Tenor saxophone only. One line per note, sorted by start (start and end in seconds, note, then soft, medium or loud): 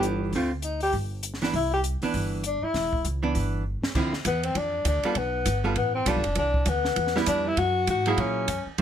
0.64 0.80 D#4 medium
0.83 0.93 G4 loud
1.56 1.72 E4 medium
1.74 1.80 G4 medium
2.47 2.65 D4 medium
2.63 3.05 E4 medium
4.27 4.47 B3 medium
4.45 4.58 C4 medium
4.57 4.86 D4 medium
4.88 5.19 D4 medium
5.17 5.65 B3 medium
5.77 5.94 B3 medium
5.95 6.09 C4 medium
6.08 6.37 D4 medium
6.38 6.70 D4 medium
6.69 7.16 B3 medium
7.28 7.49 D4 medium
7.47 7.60 E4 medium
7.58 7.88 F#4 medium
7.90 8.21 F#4 medium
8.19 8.67 C#4 medium